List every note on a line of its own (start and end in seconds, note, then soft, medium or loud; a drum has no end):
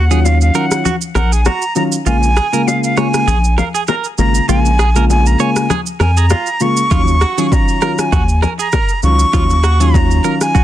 0.00 0.51 D#2 loud
0.00 0.26 F#5 loud
0.11 0.51 D#3 medium
0.11 0.52 F#3 medium
0.11 0.52 C#4 medium
0.11 0.52 F4 medium
0.11 0.19 G#4 medium
0.11 shaker medium
0.25 0.41 F5 medium
0.25 high bongo medium
0.25 shaker medium
0.41 0.57 F5 medium
0.41 shaker medium
0.54 0.83 D#3 medium
0.54 0.83 F#3 medium
0.54 0.83 C#4 medium
0.54 0.83 F4 medium
0.54 0.65 A#4 medium
0.54 0.89 F#5 medium
0.54 shaker soft
0.71 cross-stick medium
0.71 shaker loud
0.85 0.95 F#4 medium
0.85 low conga medium
0.85 shaker medium
1.01 shaker medium
1.15 1.49 A#1 loud
1.15 1.32 A#4 medium
1.15 1.34 F#5 medium
1.15 cross-stick medium
1.15 high bongo medium
1.15 low bongo medium
1.15 low conga medium
1.15 shaker soft
1.32 1.40 G#4 medium
1.32 1.47 G#5 medium
1.32 shaker medium
1.45 1.64 F#4 medium
1.45 1.76 A#5 loud
1.45 cross-stick medium
1.45 high bongo medium
1.45 low bongo medium
1.45 shaker medium
1.62 shaker soft
1.75 1.96 D#3 medium
1.75 1.97 F#3 medium
1.75 1.97 C#4 medium
1.75 1.97 F4 medium
1.75 1.83 A#5 medium
1.75 low bongo medium
1.75 shaker medium
1.92 shaker loud
2.06 2.40 A#1 loud
2.06 2.27 C#3 medium
2.06 2.27 G#3 medium
2.06 2.27 A#3 medium
2.06 2.16 F4 medium
2.06 2.27 F4 loud
2.06 2.69 G#5 loud
2.06 low conga medium
2.06 shaker medium
2.23 shaker medium
2.37 2.47 G#4 medium
2.37 cross-stick medium
2.37 shaker soft
2.53 2.94 C#3 medium
2.53 2.94 G#3 medium
2.53 2.94 A#3 medium
2.53 2.94 F4 medium
2.53 2.61 A#4 medium
2.53 shaker medium
2.67 2.84 F5 medium
2.67 high bongo medium
2.67 shaker medium
2.84 2.99 F5 medium
2.84 shaker medium
2.97 3.25 C#3 medium
2.97 3.25 G#3 medium
2.97 3.25 A#3 medium
2.97 3.25 F4 medium
2.97 3.07 C#5 medium
2.97 3.58 G#5 loud
2.97 cross-stick medium
2.97 shaker soft
3.14 cross-stick medium
3.14 shaker loud
3.28 3.61 A#1 loud
3.28 3.37 G#4 medium
3.28 low conga medium
3.28 shaker medium
3.44 shaker medium
3.58 3.68 A#4 medium
3.58 3.64 F5 medium
3.58 cross-stick medium
3.58 high bongo medium
3.58 low bongo medium
3.58 low conga medium
3.58 shaker soft
3.74 3.82 G#4 medium
3.74 3.81 G#5 medium
3.74 shaker medium
3.88 4.06 A#4 medium
3.88 3.95 A#5 loud
3.88 cross-stick medium
3.88 high bongo medium
3.88 low bongo medium
3.88 shaker medium
4.04 shaker soft
4.18 4.40 G#1 medium
4.18 4.39 C#3 medium
4.18 4.39 G#3 medium
4.18 4.39 A#3 medium
4.18 4.39 F4 medium
4.18 4.47 A#5 loud
4.18 low bongo medium
4.18 shaker medium
4.35 shaker loud
4.48 5.36 A#1 loud
4.48 4.69 C#3 medium
4.48 4.69 G#3 medium
4.48 4.69 A#3 medium
4.48 4.70 F4 loud
4.48 4.59 F4 medium
4.48 5.06 G#5 loud
4.48 low conga medium
4.48 shaker medium
4.66 shaker medium
4.79 4.89 G#4 medium
4.79 cross-stick medium
4.79 shaker medium
4.95 5.36 C#3 medium
4.95 5.36 G#3 medium
4.95 5.36 A#3 medium
4.95 5.37 F4 medium
4.95 5.04 A#4 medium
4.95 shaker medium
5.10 5.28 G#5 medium
5.10 high bongo medium
5.10 shaker medium
5.26 5.42 A#5 medium
5.26 shaker medium
5.39 5.68 C#3 medium
5.39 5.68 G#3 medium
5.39 5.68 A#3 medium
5.39 5.68 F4 medium
5.39 5.50 C#5 medium
5.39 5.74 G#5 medium
5.39 shaker soft
5.56 cross-stick medium
5.56 shaker loud
5.70 5.80 G#4 medium
5.70 cross-stick medium
5.70 low conga medium
5.70 shaker medium
5.86 shaker medium
6.00 6.34 F2 loud
6.00 6.10 A#4 medium
6.00 6.19 G#5 loud
6.00 cross-stick medium
6.00 high bongo medium
6.00 low bongo medium
6.00 low conga medium
6.00 shaker soft
6.17 6.25 G#4 medium
6.17 6.63 A#5 loud
6.17 shaker medium
6.30 6.48 F4 medium
6.30 cross-stick medium
6.30 high bongo medium
6.30 low bongo medium
6.30 shaker medium
6.46 shaker soft
6.60 6.81 C#3 medium
6.60 6.81 G#3 medium
6.60 6.82 A#3 medium
6.60 6.82 F4 medium
6.60 7.46 C#6 loud
6.60 low bongo medium
6.60 shaker medium
6.77 shaker loud
6.91 7.25 D#2 loud
6.91 7.12 D#3 medium
6.91 7.12 F#3 medium
6.91 7.12 C#4 medium
6.91 7.01 F4 medium
6.91 7.12 F4 loud
6.91 kick loud
6.91 low conga medium
6.91 shaker medium
7.08 shaker medium
7.21 7.38 F#4 medium
7.21 cross-stick medium
7.21 shaker soft
7.38 7.79 D#3 medium
7.38 7.79 F#3 medium
7.38 7.79 C#4 medium
7.38 7.79 F4 medium
7.38 7.46 G#4 medium
7.38 shaker medium
7.46 7.54 C#6 medium
7.52 8.01 A#5 loud
7.52 kick loud
7.52 high bongo medium
7.52 shaker medium
7.68 shaker medium
7.82 8.10 D#3 medium
7.82 8.10 F#3 medium
7.82 8.10 C#4 medium
7.82 8.10 F4 medium
7.82 7.92 A#4 medium
7.82 cross-stick medium
7.82 shaker soft
7.99 8.43 G#5 loud
7.99 cross-stick medium
7.99 shaker loud
8.12 8.46 D#2 loud
8.12 8.22 F#4 medium
8.12 kick loud
8.12 low conga medium
8.12 shaker medium
8.29 shaker medium
8.42 8.52 A#4 medium
8.42 8.49 G#5 medium
8.42 cross-stick medium
8.42 high bongo medium
8.42 low bongo medium
8.42 low conga medium
8.42 shaker soft
8.59 8.67 G#4 medium
8.59 9.01 A#5 medium
8.59 shaker medium
8.72 8.91 A#4 medium
8.72 kick medium
8.72 cross-stick medium
8.72 high bongo medium
8.72 low bongo medium
8.72 shaker medium
8.89 shaker soft
9.03 9.25 C#2 loud
9.03 9.24 D#3 medium
9.03 9.24 F#3 medium
9.03 9.24 C#4 medium
9.03 9.24 F4 medium
9.03 9.96 C#6 loud
9.03 low bongo medium
9.03 shaker medium
9.19 shaker loud
9.33 10.21 D#2 loud
9.33 9.54 D#3 medium
9.33 9.54 F#3 medium
9.33 9.54 C#4 medium
9.33 9.43 F4 medium
9.33 9.54 F4 loud
9.33 kick loud
9.33 low conga medium
9.33 shaker medium
9.50 shaker medium
9.64 9.80 F#4 medium
9.64 cross-stick medium
9.64 shaker soft
9.80 10.21 D#3 medium
9.80 10.21 F#3 medium
9.80 10.21 C#4 medium
9.80 10.21 F4 medium
9.80 9.88 G#4 medium
9.80 shaker medium
9.94 10.41 A#5 loud
9.94 kick loud
9.94 high bongo medium
9.94 shaker medium
10.11 shaker medium
10.24 10.52 D#3 medium
10.24 10.53 F#3 medium
10.24 10.53 C#4 medium
10.24 10.53 F4 medium
10.24 10.34 A#4 medium
10.24 shaker soft
10.41 10.64 G#5 loud
10.41 cross-stick medium
10.41 shaker loud
10.55 10.64 F#4 medium
10.55 kick loud
10.55 low conga medium
10.55 shaker medium